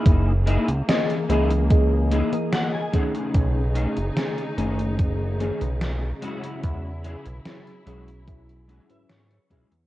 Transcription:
Already playing: A#3 D#4 E4 G#4
0.06 F#1, kick, closed hi-hat
0.46 A#3 D#4 E4 G#4, closed hi-hat
0.68 C#2, closed hi-hat
0.88 E3 A#3 G#4 D#5, snare, closed hi-hat
1.10 closed hi-hat
1.29 C#2 E3 A#3 D#4 E4 G#4 D#5, closed hi-hat
1.50 closed hi-hat
1.70 E3 A#3 G#4 D#5, kick, closed hi-hat
2.11 A#3 D#4 E4 G#4 D#5, closed hi-hat
2.32 E3 A#3 A#4 D#5, closed hi-hat
2.52 F#5, snare, closed hi-hat
2.74 G#5
2.92 C#3 D#3 A3 C#4 D#4 G#4, kick, closed hi-hat
3.15 closed hi-hat
3.35 B1, kick, closed hi-hat
3.75 A3 C#4 D#4 G#4, closed hi-hat
3.97 F#1, closed hi-hat
4.16 D#3 A3 C#4 G#4, snare, closed hi-hat
4.38 closed hi-hat
4.57 F#1 D#3 A3 C#4 D#4 G#4, closed hi-hat
4.79 closed hi-hat
4.99 kick, closed hi-hat
5.39 D#3 A3 C#4 D#4 G#4, closed hi-hat
5.61 B1, closed hi-hat
5.81 snare, closed hi-hat
6.21 F#3 G#3 C#4 E4 F#4, closed hi-hat
6.43 closed hi-hat
6.63 E2, kick, closed hi-hat
7.03 G#3 C#4 E4 G#4, closed hi-hat
7.25 B1, closed hi-hat
7.45 F#3 C#4 E4 G#4, snare, closed hi-hat
7.67 closed hi-hat
7.86 B1 F#3 G#3 C#4 E4 F#4 G#4, closed hi-hat
8.08 closed hi-hat
8.27 F#3 C#4 E4 G#4, kick, closed hi-hat
8.49 closed hi-hat
8.67 G#3 C#4 E4 F#4 G#5, closed hi-hat
8.89 G#2 F#3 C#4 E4 B4 E5, closed hi-hat
9.09 G#2 C#5, snare, closed hi-hat
9.31 closed hi-hat
9.50 B1 F#3 G#3 C#4 E4 G#4, kick, closed hi-hat
9.72 E2, closed hi-hat

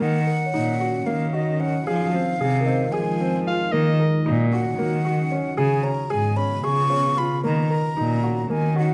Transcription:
0.00 D#3 A#3 C#4 F#4 F#5
0.27 A#4
0.46 C#5
0.54 A#2 D#4
0.80 F#4
1.06 D#3 A#3 F5
1.33 F#4 D#5
1.60 C#4 F#5
1.87 F3 G#3 F4 G#4 F5
2.13 C4
2.40 C3 G#4
2.61 A#4
2.65 C4 D#5
2.92 F3 G#4 G#5
3.21 C4
3.47 F4 F5
3.72 D#3 A#3 C#4 F#4 D#5
4.00 A#4
4.26 A#2 D#4
4.53 F#4 F#5
4.79 D#3 A#3
5.05 F#4
5.32 C#4
5.57 C#3 B3 F4 G#4 G#5
5.83 C#4 A#5
6.10 G#2 G#4 G#5
6.36 C#4 B5
6.64 C#3 G#4 C#6
6.90 C#4
7.17 F4 B5
7.44 D#3 A#3 C#4 F#4 A#5
7.70 A#4
7.97 A#2 D#4
8.23 F#4
8.50 D#3 A#3 G#5
8.76 F#4 F#5

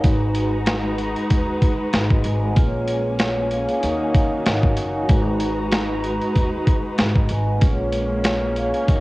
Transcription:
0.00 G#3 D#4 F#4, closed hi-hat
0.04 G#1 G#3 D#4 F#4 B4 A#5, kick
0.35 closed hi-hat
0.66 snare, closed hi-hat
0.98 closed hi-hat
1.16 closed hi-hat
1.30 D#2, kick, closed hi-hat
1.62 kick, closed hi-hat
1.93 G#1, snare, closed hi-hat
2.11 F#4 D#5, kick
2.24 G#1 B4 G#5, closed hi-hat
2.43 F#5
2.53 A#3 C#4 F4, kick, closed hi-hat
2.57 A#1 G#4 B4
2.67 C#5
2.88 closed hi-hat
3.19 F4 C#5, snare, closed hi-hat
3.51 G#4 C#5 F5, closed hi-hat
3.68 F5 G#5, closed hi-hat
3.80 D#2 D#3 D#4 F#4 A#4 D#5, closed hi-hat
3.85 C#5 F5
3.94 F#5
4.13 F5, kick, closed hi-hat
4.45 G#1 F#5, snare, closed hi-hat
4.63 kick
4.77 F#1 G#5, closed hi-hat
5.03 G#3 D#4
5.08 G#1 G#3 D#4 F#4 B4 A#5, kick, closed hi-hat
5.40 closed hi-hat
5.72 snare, closed hi-hat
6.04 closed hi-hat
6.21 closed hi-hat
6.35 D#2, kick, closed hi-hat
6.67 kick, closed hi-hat
6.98 G#1, snare, closed hi-hat
7.16 F#4 D#5, kick
7.29 G#1 B4 G#5, closed hi-hat
7.48 F#5
7.58 G#3 A#3 C#4 F4, kick, closed hi-hat
7.62 A#1 G#4 B4
7.73 C#5
7.93 closed hi-hat
8.24 F4 C#5, snare, closed hi-hat
8.56 G#4 C#5 F5, closed hi-hat
8.73 F5 G#5, closed hi-hat
8.85 D#2 D#4 A#4 D#5, kick, closed hi-hat
8.90 D#3 D#4 F#4 C#5 F5

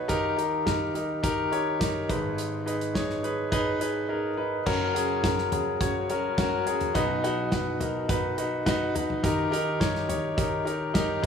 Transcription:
Already playing: D#4 F#4 G#4 B4 C#5
0.08 D#2 D#3 D#4 G4 A#4, kick, closed hi-hat
0.37 D#4 G4 A#4, closed hi-hat
0.66 D#4 G4 A#4, kick, snare, closed hi-hat
0.94 D#4 G4 A#4, closed hi-hat
1.23 D#4 G4 A#4, kick, closed hi-hat
1.52 D#4 G4 C#5, closed hi-hat
1.80 D#4 G4 A#4, kick, snare, closed hi-hat
2.09 G#1 G#2 D#4 G#4 B4, kick, closed hi-hat
2.38 closed hi-hat
2.66 D#4 G#4 B4, closed hi-hat
2.81 closed hi-hat
2.94 D#4 G#4 C#5, kick, snare, closed hi-hat
3.10 snare
3.23 D#4 G#4 B4, closed hi-hat
3.52 D#4 G#4 B4, kick, closed hi-hat
3.81 D#4 G#4 B4, closed hi-hat
4.09 D#4 G#4 A#4
4.37 D#4 G#4 B4
4.66 F#1 F#2 C#4 F#4 A#4, kick, crash
4.94 C#4 F#4 G#4, closed hi-hat
5.23 C#4 F#4 A#4, kick, snare, closed hi-hat
5.38 snare
5.52 C#4 F#4 G#4, closed hi-hat, floor tom
5.81 C#4 F#4 C#5, kick, closed hi-hat
6.10 C#4 F#4 A#4, closed hi-hat
6.38 C#4 F#4 A#4, kick, snare, closed hi-hat
6.67 C#4 F#4 G#4, closed hi-hat
6.81 closed hi-hat, floor tom
6.95 B1 B2 D#4 F#4 B4, kick, closed hi-hat
7.24 D#4 F#4 B4, closed hi-hat
7.52 D#4 F#4 B4, kick, snare, closed hi-hat
7.80 D#4 F#4 A#4, closed hi-hat, floor tom
8.09 D#4 F#4 B4, kick, closed hi-hat
8.38 D#4 F#4 B4, closed hi-hat
8.66 D#4 F#4 B4, kick, snare, closed hi-hat
8.95 D#4 F#4 B4, closed hi-hat, floor tom
9.10 floor tom
9.23 D#2 D#3 D#4 G4 A#4, kick, closed hi-hat
9.51 D#4 G4 A#4, closed hi-hat
9.80 D#4 G4 C#5, kick, snare, closed hi-hat
9.95 snare
10.08 D#4 G4 C#5, closed hi-hat, floor tom
10.37 D#4 G4 A#4, kick, closed hi-hat
10.65 D#4 G4 A#4, closed hi-hat
10.94 D#4 G4 A#4, kick, snare, closed hi-hat
11.22 G#1 G#2 D#4 G#4 B4

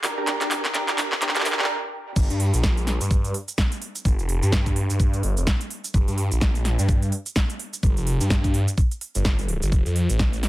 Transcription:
0.04 D4 G4 A#4, clap, open hi-hat
0.17 D4 G4 A#4
0.27 D4 G4 A#4, clap, closed hi-hat
0.41 D4 G4 A#4, clap, closed hi-hat
0.51 clap, open hi-hat
0.65 clap, closed hi-hat
0.74 D4 G4 A#4, clap, closed hi-hat
0.88 D4 G4 A#4, clap, closed hi-hat
0.98 clap, open hi-hat
1.12 clap
1.22 D4 G4 A#4, clap, closed hi-hat
1.29 clap
1.36 D4 G4 A#4, clap, closed hi-hat
1.40 clap
1.45 D4 G4 A#4, clap, open hi-hat
1.52 clap
1.59 D4 G4 A#4, clap
1.64 clap
2.16 G1, kick, crash, cabasa
2.30 G2, closed hi-hat, cabasa
2.40 open hi-hat
2.54 A#1, closed hi-hat, cabasa
2.63 kick, snare, cabasa
2.77 closed hi-hat, cabasa
2.87 snare, open hi-hat
3.01 G2, closed hi-hat, cabasa
3.11 kick, cabasa
3.25 closed hi-hat, cabasa
3.34 open hi-hat
3.48 closed hi-hat, cabasa
3.58 kick, snare, cabasa
3.72 closed hi-hat, cabasa
3.82 open hi-hat
3.95 closed hi-hat, cabasa
4.05 G1, kick, cabasa
4.19 F1, closed hi-hat, cabasa
4.29 open hi-hat
4.43 G2, closed hi-hat, cabasa
4.52 kick, snare, cabasa
4.66 kick, closed hi-hat, cabasa
4.76 open hi-hat
4.90 G2, closed hi-hat, cabasa
5.00 kick, cabasa
5.14 closed hi-hat, cabasa
5.23 G1, open hi-hat
5.37 F1, closed hi-hat, cabasa
5.47 kick, snare, cabasa
5.61 closed hi-hat, cabasa
5.71 open hi-hat
5.84 closed hi-hat, cabasa
5.94 G1, kick, cabasa
6.08 G2, closed hi-hat, cabasa
6.18 open hi-hat
6.32 A#1, closed hi-hat, cabasa
6.41 kick, snare, cabasa
6.55 closed hi-hat, cabasa
6.65 snare, open hi-hat
6.79 G2, closed hi-hat, cabasa
6.89 kick, cabasa
7.02 closed hi-hat, cabasa
7.12 open hi-hat
7.26 closed hi-hat, cabasa
7.36 kick, snare, cabasa
7.50 closed hi-hat, cabasa
7.59 open hi-hat
7.73 closed hi-hat, cabasa
7.83 G1, kick, cabasa
7.97 F1, closed hi-hat, cabasa
8.07 open hi-hat
8.21 G2, closed hi-hat, cabasa
8.30 kick, snare, cabasa
8.44 kick, closed hi-hat, cabasa
8.54 open hi-hat
8.68 closed hi-hat, cabasa
8.78 kick, cabasa
8.91 closed hi-hat, cabasa
9.01 open hi-hat
9.15 G1, closed hi-hat, cabasa
9.25 kick, snare, cabasa
9.39 closed hi-hat, cabasa
9.49 open hi-hat
9.62 G1, closed hi-hat, cabasa
9.72 F1, kick, cabasa
9.86 F2, closed hi-hat, cabasa
9.96 open hi-hat
10.10 A1, closed hi-hat, cabasa
10.19 kick, snare, cabasa
10.33 closed hi-hat, cabasa
10.43 snare, open hi-hat

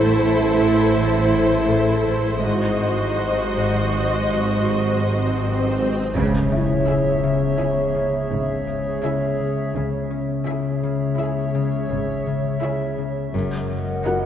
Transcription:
Already playing: A1 A2 A3 E4 A4 C5 E5
0.24 A3
0.60 A2
0.97 A2
1.34 A2
1.69 A2
2.07 A2
2.44 G#1 G#2 F#4 C5 D#5, swell
2.80 G#2
3.18 G#3
3.57 G#2
3.92 G#3
4.30 G#2
4.67 G#2
5.05 G#2
5.41 G#2
5.79 G#2
6.15 C#2 C#3 G#4 C#5 E5, impact
6.52 C#4 E4 E5
6.87 C#3 E4 G#4 E5
7.23 C#3
7.58 C#3 E4 G#4 E5
7.95 C#3
8.31 G#1 G#2 C#3
8.67 C#3
9.03 C#3 E4 G#4 E5
9.40 C#3
9.75 C#2 C#3 G#4 C#5 E5
10.10 C#4
10.46 C#3 E4 G#4 E5
10.83 C#3
11.19 C#3 E4 G#4 E5
11.55 C#3
11.89 G#1 G#2 C#3
12.26 C#3
12.62 C#3 E4 G#4 E5
12.98 C#3
13.34 F#1 F#2 A#4 D#5 F#5
13.70 F#3
14.05 F#2 D#4 F#4 A#4 F#5

